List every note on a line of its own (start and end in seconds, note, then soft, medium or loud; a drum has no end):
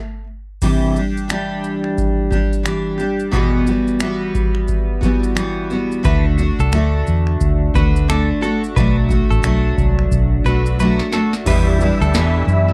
0.00 0.22 D3 medium
0.00 0.24 A3 medium
0.62 0.96 C3 medium
0.62 0.96 E3 medium
0.62 0.96 G3 medium
0.62 0.96 D4 medium
0.62 0.95 G4 medium
0.62 kick medium
0.62 crash medium
0.62 shaker medium
0.96 1.28 G3 soft
0.96 1.29 D4 soft
0.96 1.30 G4 medium
0.96 shaker soft
1.17 shaker soft
1.28 2.35 E3 medium
1.28 2.33 G3 medium
1.28 2.31 D4 medium
1.28 2.30 G4 medium
1.28 finger snap medium
1.28 shaker medium
1.64 shaker soft
1.84 finger snap soft
1.98 kick medium
1.98 shaker medium
2.31 2.64 G3 soft
2.31 2.65 D4 soft
2.31 2.65 G4 soft
2.31 kick medium
2.31 shaker soft
2.53 shaker soft
2.63 2.99 E3 medium
2.63 2.99 G3 medium
2.63 2.98 D4 medium
2.63 finger snap medium
2.63 shaker medium
2.67 2.96 G4 medium
2.98 3.32 G3 soft
2.98 3.33 D4 soft
2.98 3.33 G4 soft
2.98 shaker soft
3.19 shaker soft
3.31 3.66 E2 medium
3.31 3.67 B2 medium
3.31 3.67 E3 medium
3.31 3.67 G3 medium
3.31 3.66 B3 medium
3.31 3.65 F#4 medium
3.31 kick medium
3.31 shaker medium
3.66 3.99 E3 soft
3.66 4.00 G3 soft
3.66 4.01 B3 soft
3.66 4.01 F#4 soft
3.66 shaker soft
3.88 shaker soft
4.00 5.03 E3 medium
4.00 5.02 G3 medium
4.00 5.01 B3 medium
4.00 5.00 F#4 medium
4.00 finger snap medium
4.00 shaker medium
4.35 kick medium
4.35 shaker soft
4.55 finger snap soft
4.68 kick medium
4.68 shaker medium
5.01 5.34 E3 soft
5.01 5.35 G3 soft
5.01 5.36 B3 soft
5.01 5.36 F#4 medium
5.01 kick medium
5.01 shaker soft
5.23 shaker soft
5.35 5.70 E3 medium
5.35 5.71 G3 medium
5.35 5.70 B3 medium
5.35 5.69 F#4 medium
5.35 finger snap loud
5.35 shaker medium
5.70 6.03 E3 soft
5.70 6.03 G3 soft
5.70 6.04 B3 soft
5.70 6.04 F#4 medium
5.70 shaker soft
5.92 shaker soft
6.03 6.50 D2 loud
6.03 6.38 D3 medium
6.03 6.39 A3 medium
6.03 6.38 D4 medium
6.03 6.36 F#4 medium
6.03 6.25 B4 medium
6.03 kick medium
6.03 shaker medium
6.38 6.72 A3 soft
6.38 6.73 D4 soft
6.38 6.72 F#4 medium
6.38 shaker medium
6.59 6.73 C2 medium
6.59 7.05 A4 medium
6.59 shaker soft
6.72 7.01 D2 medium
6.72 8.08 D3 medium
6.72 7.77 A3 medium
6.72 7.75 D4 medium
6.72 7.74 F#4 medium
6.72 finger snap medium
6.72 shaker medium
7.07 7.35 E2 medium
7.07 shaker medium
7.27 finger snap soft
7.40 7.69 D2 medium
7.40 kick medium
7.40 shaker medium
7.74 8.31 D2 medium
7.74 8.08 A3 soft
7.74 8.08 D4 soft
7.74 8.08 F#4 soft
7.74 8.07 B4 medium
7.74 kick medium
7.74 shaker soft
7.96 shaker medium
8.08 8.42 D3 medium
8.08 8.43 A3 medium
8.08 8.42 D4 medium
8.08 8.40 F#4 medium
8.08 8.29 A4 medium
8.08 finger snap loud
8.08 shaker medium
8.42 8.76 A3 soft
8.42 8.76 D4 soft
8.42 8.76 F#4 medium
8.42 8.62 A4 medium
8.42 shaker soft
8.64 shaker soft
8.76 9.21 B1 medium
8.76 9.10 B2 medium
8.76 9.11 F#3 medium
8.76 9.11 A3 medium
8.76 9.09 D4 medium
8.76 9.07 F#4 medium
8.76 8.96 B4 medium
8.76 kick medium
8.76 shaker medium
9.09 9.42 A3 soft
9.09 9.43 D4 soft
9.09 9.43 F#4 medium
9.09 kick medium
9.09 shaker medium
9.30 9.42 A1 medium
9.30 9.75 A4 medium
9.30 shaker medium
9.42 9.72 B1 medium
9.42 10.44 F#3 medium
9.42 10.45 A3 medium
9.42 10.46 D4 medium
9.42 10.44 F#4 medium
9.42 finger snap loud
9.42 shaker medium
9.78 10.06 C2 medium
9.78 kick medium
9.78 shaker medium
9.99 finger snap soft
10.12 10.39 B1 medium
10.12 kick medium
10.12 shaker medium
10.45 11.01 B1 medium
10.45 10.79 A3 soft
10.45 10.80 D4 medium
10.45 10.79 F#4 medium
10.45 10.78 B4 medium
10.45 shaker soft
10.66 shaker soft
10.79 11.13 F#3 medium
10.79 11.13 A3 medium
10.79 11.12 D4 medium
10.79 11.10 F#4 medium
10.79 10.99 B4 medium
10.79 shaker medium
10.99 snare medium
11.11 11.47 A3 soft
11.11 11.46 D4 soft
11.11 11.46 F#4 medium
11.11 11.33 A4 medium
11.11 snare medium
11.11 shaker soft
11.33 snare medium
11.33 shaker soft
11.46 11.80 E2 medium
11.46 11.91 E2 medium
11.46 11.81 B2 medium
11.46 11.81 E3 medium
11.46 11.81 G3 medium
11.46 11.69 D4 medium
11.46 11.81 D4 medium
11.46 11.79 E4 medium
11.46 11.69 G4 medium
11.46 12.73 G4 medium
11.46 11.70 B4 medium
11.46 11.66 B4 medium
11.46 12.73 D5 medium
11.46 11.70 E5 medium
11.46 12.73 B5 medium
11.46 12.73 E6 medium
11.46 kick loud
11.46 crash medium
11.46 shaker medium
11.78 12.42 D4 medium
11.78 12.15 D4 medium
11.78 12.14 E4 medium
11.78 12.42 G4 medium
11.78 12.42 B4 medium
11.78 12.43 D5 medium
11.78 shaker medium
11.82 12.14 E3 soft
11.82 12.15 G3 soft
12.01 12.14 D2 medium
12.01 12.45 A4 medium
12.01 shaker medium
12.14 12.42 E2 medium
12.14 12.73 E2 medium
12.14 12.73 B2 medium
12.14 12.73 E3 medium
12.14 12.73 D4 medium
12.14 12.73 E4 loud
12.14 snare loud
12.14 shaker medium
12.47 12.73 F#2 medium
12.47 shaker medium
12.69 snare soft